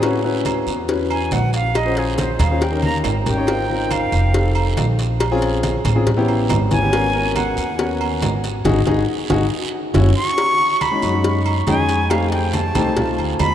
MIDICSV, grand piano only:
0, 0, Header, 1, 2, 480
1, 0, Start_track
1, 0, Tempo, 431344
1, 30, Time_signature, 4, 2, 24, 8
1, 15073, End_track
2, 0, Start_track
2, 0, Title_t, "Grand piano"
2, 0, Program_c, 0, 0
2, 26, Note_on_c, 0, 61, 97
2, 30, Note_on_c, 0, 64, 79
2, 32, Note_on_c, 0, 66, 86
2, 34, Note_on_c, 0, 71, 97
2, 196, Note_off_c, 0, 61, 0
2, 198, Note_off_c, 0, 64, 0
2, 199, Note_off_c, 0, 66, 0
2, 200, Note_off_c, 0, 71, 0
2, 265, Note_on_c, 0, 61, 85
2, 267, Note_on_c, 0, 64, 85
2, 270, Note_on_c, 0, 66, 77
2, 274, Note_on_c, 0, 71, 95
2, 772, Note_off_c, 0, 61, 0
2, 773, Note_off_c, 0, 64, 0
2, 774, Note_off_c, 0, 66, 0
2, 776, Note_off_c, 0, 71, 0
2, 986, Note_on_c, 0, 61, 79
2, 988, Note_on_c, 0, 64, 61
2, 989, Note_on_c, 0, 66, 65
2, 992, Note_on_c, 0, 71, 86
2, 1660, Note_off_c, 0, 61, 0
2, 1662, Note_off_c, 0, 64, 0
2, 1662, Note_off_c, 0, 66, 0
2, 1663, Note_off_c, 0, 71, 0
2, 2061, Note_on_c, 0, 61, 82
2, 2065, Note_on_c, 0, 65, 74
2, 2069, Note_on_c, 0, 68, 74
2, 2071, Note_on_c, 0, 72, 92
2, 2570, Note_off_c, 0, 61, 0
2, 2572, Note_off_c, 0, 65, 0
2, 2574, Note_off_c, 0, 68, 0
2, 2575, Note_off_c, 0, 72, 0
2, 2787, Note_on_c, 0, 61, 72
2, 2793, Note_on_c, 0, 65, 64
2, 2793, Note_on_c, 0, 68, 59
2, 2797, Note_on_c, 0, 72, 84
2, 2909, Note_off_c, 0, 61, 0
2, 2912, Note_off_c, 0, 65, 0
2, 2912, Note_off_c, 0, 68, 0
2, 2914, Note_off_c, 0, 72, 0
2, 3019, Note_on_c, 0, 61, 78
2, 3020, Note_on_c, 0, 63, 70
2, 3025, Note_on_c, 0, 70, 78
2, 3026, Note_on_c, 0, 67, 67
2, 3445, Note_off_c, 0, 61, 0
2, 3446, Note_off_c, 0, 63, 0
2, 3448, Note_off_c, 0, 70, 0
2, 3449, Note_off_c, 0, 67, 0
2, 3623, Note_on_c, 0, 61, 63
2, 3625, Note_on_c, 0, 63, 58
2, 3629, Note_on_c, 0, 67, 71
2, 3630, Note_on_c, 0, 70, 82
2, 3711, Note_off_c, 0, 61, 0
2, 3712, Note_off_c, 0, 63, 0
2, 3714, Note_off_c, 0, 67, 0
2, 3714, Note_off_c, 0, 70, 0
2, 3745, Note_on_c, 0, 61, 75
2, 3747, Note_on_c, 0, 63, 67
2, 3750, Note_on_c, 0, 67, 75
2, 3756, Note_on_c, 0, 73, 92
2, 3832, Note_off_c, 0, 61, 0
2, 3833, Note_off_c, 0, 63, 0
2, 3834, Note_off_c, 0, 67, 0
2, 3837, Note_off_c, 0, 73, 0
2, 3867, Note_on_c, 0, 60, 80
2, 3871, Note_on_c, 0, 63, 72
2, 3873, Note_on_c, 0, 65, 76
2, 3877, Note_on_c, 0, 70, 80
2, 4037, Note_off_c, 0, 60, 0
2, 4039, Note_off_c, 0, 63, 0
2, 4040, Note_off_c, 0, 65, 0
2, 4042, Note_off_c, 0, 70, 0
2, 4110, Note_on_c, 0, 60, 77
2, 4111, Note_on_c, 0, 63, 59
2, 4115, Note_on_c, 0, 65, 63
2, 4116, Note_on_c, 0, 70, 81
2, 4615, Note_off_c, 0, 60, 0
2, 4615, Note_off_c, 0, 63, 0
2, 4617, Note_off_c, 0, 65, 0
2, 4618, Note_off_c, 0, 70, 0
2, 4830, Note_on_c, 0, 60, 67
2, 4833, Note_on_c, 0, 63, 58
2, 4835, Note_on_c, 0, 67, 60
2, 4838, Note_on_c, 0, 69, 73
2, 5503, Note_off_c, 0, 60, 0
2, 5504, Note_off_c, 0, 63, 0
2, 5505, Note_off_c, 0, 67, 0
2, 5507, Note_off_c, 0, 69, 0
2, 5911, Note_on_c, 0, 60, 100
2, 5914, Note_on_c, 0, 61, 90
2, 5918, Note_on_c, 0, 65, 92
2, 5919, Note_on_c, 0, 68, 114
2, 6415, Note_off_c, 0, 60, 0
2, 6417, Note_off_c, 0, 61, 0
2, 6419, Note_off_c, 0, 65, 0
2, 6419, Note_off_c, 0, 68, 0
2, 6626, Note_on_c, 0, 60, 94
2, 6627, Note_on_c, 0, 61, 72
2, 6632, Note_on_c, 0, 65, 81
2, 6632, Note_on_c, 0, 68, 96
2, 6749, Note_off_c, 0, 60, 0
2, 6749, Note_off_c, 0, 61, 0
2, 6751, Note_off_c, 0, 65, 0
2, 6752, Note_off_c, 0, 68, 0
2, 6862, Note_on_c, 0, 59, 94
2, 6865, Note_on_c, 0, 61, 88
2, 6865, Note_on_c, 0, 64, 98
2, 6871, Note_on_c, 0, 67, 115
2, 7286, Note_off_c, 0, 59, 0
2, 7288, Note_off_c, 0, 61, 0
2, 7288, Note_off_c, 0, 64, 0
2, 7291, Note_off_c, 0, 67, 0
2, 7464, Note_on_c, 0, 59, 70
2, 7470, Note_on_c, 0, 61, 70
2, 7471, Note_on_c, 0, 67, 78
2, 7472, Note_on_c, 0, 64, 66
2, 7552, Note_off_c, 0, 59, 0
2, 7554, Note_off_c, 0, 61, 0
2, 7555, Note_off_c, 0, 67, 0
2, 7556, Note_off_c, 0, 64, 0
2, 7587, Note_on_c, 0, 59, 81
2, 7593, Note_on_c, 0, 61, 82
2, 7593, Note_on_c, 0, 64, 72
2, 7598, Note_on_c, 0, 67, 100
2, 7673, Note_off_c, 0, 59, 0
2, 7676, Note_off_c, 0, 61, 0
2, 7676, Note_off_c, 0, 64, 0
2, 7678, Note_off_c, 0, 67, 0
2, 7707, Note_on_c, 0, 59, 82
2, 7713, Note_on_c, 0, 61, 78
2, 7714, Note_on_c, 0, 66, 73
2, 7717, Note_on_c, 0, 70, 91
2, 7877, Note_off_c, 0, 59, 0
2, 7880, Note_off_c, 0, 61, 0
2, 7880, Note_off_c, 0, 66, 0
2, 7882, Note_off_c, 0, 70, 0
2, 7946, Note_on_c, 0, 59, 73
2, 7948, Note_on_c, 0, 61, 62
2, 7954, Note_on_c, 0, 66, 65
2, 7956, Note_on_c, 0, 70, 91
2, 8452, Note_off_c, 0, 59, 0
2, 8454, Note_off_c, 0, 61, 0
2, 8456, Note_off_c, 0, 66, 0
2, 8457, Note_off_c, 0, 70, 0
2, 8664, Note_on_c, 0, 59, 68
2, 8665, Note_on_c, 0, 61, 66
2, 8667, Note_on_c, 0, 66, 65
2, 8671, Note_on_c, 0, 70, 75
2, 9339, Note_off_c, 0, 59, 0
2, 9340, Note_off_c, 0, 61, 0
2, 9341, Note_off_c, 0, 66, 0
2, 9343, Note_off_c, 0, 70, 0
2, 9629, Note_on_c, 0, 68, 99
2, 9631, Note_on_c, 0, 63, 110
2, 9631, Note_on_c, 0, 66, 108
2, 9783, Note_off_c, 0, 68, 0
2, 9784, Note_off_c, 0, 63, 0
2, 9785, Note_off_c, 0, 66, 0
2, 9867, Note_on_c, 0, 68, 107
2, 9868, Note_on_c, 0, 66, 83
2, 9872, Note_on_c, 0, 63, 107
2, 10022, Note_off_c, 0, 68, 0
2, 10023, Note_off_c, 0, 66, 0
2, 10025, Note_off_c, 0, 63, 0
2, 10351, Note_on_c, 0, 68, 97
2, 10352, Note_on_c, 0, 66, 112
2, 10353, Note_on_c, 0, 63, 102
2, 10504, Note_off_c, 0, 68, 0
2, 10505, Note_off_c, 0, 63, 0
2, 10505, Note_off_c, 0, 66, 0
2, 11071, Note_on_c, 0, 64, 99
2, 11072, Note_on_c, 0, 66, 105
2, 11075, Note_on_c, 0, 61, 107
2, 11225, Note_off_c, 0, 64, 0
2, 11225, Note_off_c, 0, 66, 0
2, 11226, Note_off_c, 0, 61, 0
2, 12143, Note_on_c, 0, 56, 73
2, 12147, Note_on_c, 0, 61, 76
2, 12149, Note_on_c, 0, 63, 69
2, 12152, Note_on_c, 0, 66, 75
2, 12231, Note_off_c, 0, 56, 0
2, 12233, Note_off_c, 0, 61, 0
2, 12234, Note_off_c, 0, 63, 0
2, 12235, Note_off_c, 0, 66, 0
2, 12264, Note_on_c, 0, 56, 81
2, 12270, Note_on_c, 0, 61, 73
2, 12274, Note_on_c, 0, 63, 70
2, 12275, Note_on_c, 0, 66, 87
2, 12351, Note_off_c, 0, 56, 0
2, 12354, Note_off_c, 0, 61, 0
2, 12356, Note_off_c, 0, 63, 0
2, 12357, Note_off_c, 0, 66, 0
2, 12385, Note_on_c, 0, 56, 73
2, 12389, Note_on_c, 0, 63, 64
2, 12390, Note_on_c, 0, 61, 65
2, 12393, Note_on_c, 0, 66, 71
2, 12808, Note_off_c, 0, 56, 0
2, 12810, Note_off_c, 0, 63, 0
2, 12811, Note_off_c, 0, 61, 0
2, 12812, Note_off_c, 0, 66, 0
2, 12984, Note_on_c, 0, 56, 88
2, 12988, Note_on_c, 0, 61, 84
2, 12989, Note_on_c, 0, 63, 88
2, 12992, Note_on_c, 0, 68, 101
2, 13324, Note_off_c, 0, 56, 0
2, 13325, Note_off_c, 0, 61, 0
2, 13326, Note_off_c, 0, 63, 0
2, 13328, Note_off_c, 0, 68, 0
2, 13467, Note_on_c, 0, 57, 84
2, 13468, Note_on_c, 0, 60, 73
2, 13471, Note_on_c, 0, 63, 72
2, 13474, Note_on_c, 0, 67, 93
2, 13973, Note_off_c, 0, 57, 0
2, 13974, Note_off_c, 0, 60, 0
2, 13975, Note_off_c, 0, 63, 0
2, 13977, Note_off_c, 0, 67, 0
2, 14193, Note_on_c, 0, 57, 88
2, 14200, Note_on_c, 0, 60, 80
2, 14200, Note_on_c, 0, 63, 80
2, 14206, Note_on_c, 0, 67, 94
2, 14361, Note_off_c, 0, 57, 0
2, 14364, Note_off_c, 0, 60, 0
2, 14364, Note_off_c, 0, 63, 0
2, 14367, Note_off_c, 0, 67, 0
2, 14433, Note_on_c, 0, 57, 62
2, 14438, Note_on_c, 0, 60, 67
2, 14442, Note_on_c, 0, 63, 66
2, 14444, Note_on_c, 0, 65, 81
2, 14937, Note_off_c, 0, 57, 0
2, 14939, Note_off_c, 0, 60, 0
2, 14941, Note_off_c, 0, 63, 0
2, 14942, Note_off_c, 0, 65, 0
2, 15073, End_track
0, 0, End_of_file